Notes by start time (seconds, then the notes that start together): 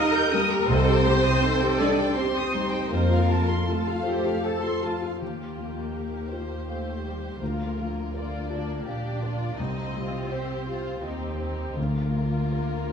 Already playing: D#2 G3 D#4 G4 A#4 D#5 D#6
0.00 D#4
0.14 G4 G6
0.32 G3 A#3 A#4 D#6
0.51 G4 A#5
0.67 C2 C4 A4 C5 D#5
0.86 G4 G5
1.04 G3 G4 C6
1.22 G4 D#6
1.41 D#4 A4 C6
1.60 G4 G5
1.78 G3 D4 D5 D#5
1.98 G4 G5
2.15 C4 G4 C5 C6
2.35 G4 D#6
2.53 G3 D#4 C6
2.71 G4 G5
2.90 F2 A#3 F4 A#4 C5
3.10 F4 F5
3.30 F3 A5
3.48 F4 C6
3.68 F3 A3 F4 A4 A5
3.86 F4 F5
4.06 F3 G4 C5
4.25 F4 F5
4.45 A4 C5 A5
4.63 F4 C6
4.83 F3 F4 A5
5.02 F4 F5
5.20 D#2 D#3 A#3 F4 G4
5.58 F3
5.93 G4 A#4
6.31 F4 C5
6.68 A3 C5 F5
7.05 G3 G4
7.40 D2 D3 A#3 F4 A#4
7.77 F3
8.14 A#3 F4 A#4 D5
8.49 D4 F4
8.85 A#1 A#2 D4 G4 D5 F5
9.22 F4 A#4
9.56 C2 C3 C4 D#4 D#5
9.94 G3 F4
10.30 G4 C5
10.66 F4 G4
11.02 D#2 D#3 C4 D#4 G4 D#5
11.39 D#4 C5
11.76 D2 D3 A#3 F4 A#4
12.14 A#3
12.52 A#4